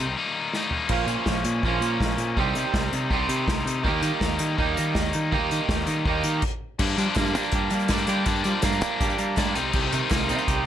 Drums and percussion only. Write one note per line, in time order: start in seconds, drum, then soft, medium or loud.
0.53 snare medium
0.71 floor tom medium
0.89 kick loud
0.89 crash medium
1.08 closed hi-hat medium
1.26 kick loud
1.26 snare loud
1.44 closed hi-hat medium
1.63 kick loud
1.82 closed hi-hat medium
2.00 kick loud
2.00 snare loud
2.18 closed hi-hat medium
2.37 kick loud
2.55 closed hi-hat medium
2.74 kick loud
2.74 snare loud
2.93 closed hi-hat medium
3.11 kick loud
3.29 closed hi-hat medium
3.48 kick loud
3.48 snare loud
3.67 closed hi-hat medium
3.85 kick loud
4.02 closed hi-hat medium
4.21 kick loud
4.21 snare loud
4.39 closed hi-hat medium
4.58 kick loud
4.77 closed hi-hat medium
4.95 kick loud
4.95 snare loud
5.13 closed hi-hat medium
5.32 kick loud
5.51 closed hi-hat medium
5.69 kick loud
5.69 snare loud
5.87 closed hi-hat medium
6.06 kick loud
6.24 closed hi-hat loud
6.42 kick loud
6.42 crash medium
6.79 kick loud
6.79 crash loud
6.98 closed hi-hat medium
7.15 kick loud
7.15 snare loud
7.15 clap loud
7.15 closed hi-hat medium
7.26 closed hi-hat soft
7.35 closed hi-hat medium
7.43 closed hi-hat soft
7.51 kick loud
7.51 closed hi-hat loud
7.70 clap medium
7.70 closed hi-hat medium
7.79 closed hi-hat soft
7.88 kick loud
7.88 snare loud
7.88 clap medium
7.88 closed hi-hat loud
7.97 closed hi-hat soft
8.07 snare soft
8.07 closed hi-hat medium
8.26 kick loud
8.26 closed hi-hat medium
8.36 closed hi-hat soft
8.44 closed hi-hat medium
8.62 kick loud
8.62 snare loud
8.62 clap loud
8.62 closed hi-hat loud
8.72 closed hi-hat soft
8.81 closed hi-hat medium
9.01 kick loud
9.01 closed hi-hat loud
9.10 closed hi-hat soft
9.18 clap medium
9.18 closed hi-hat medium
9.37 kick loud
9.37 snare loud
9.37 clap medium
9.37 closed hi-hat loud
9.55 snare soft
9.55 closed hi-hat medium
9.73 kick loud
9.73 crash loud
9.92 closed hi-hat medium
10.10 kick loud
10.10 snare loud
10.10 clap loud
10.10 closed hi-hat medium
10.20 closed hi-hat soft
10.29 closed hi-hat medium
10.38 closed hi-hat soft
10.48 kick loud
10.48 closed hi-hat loud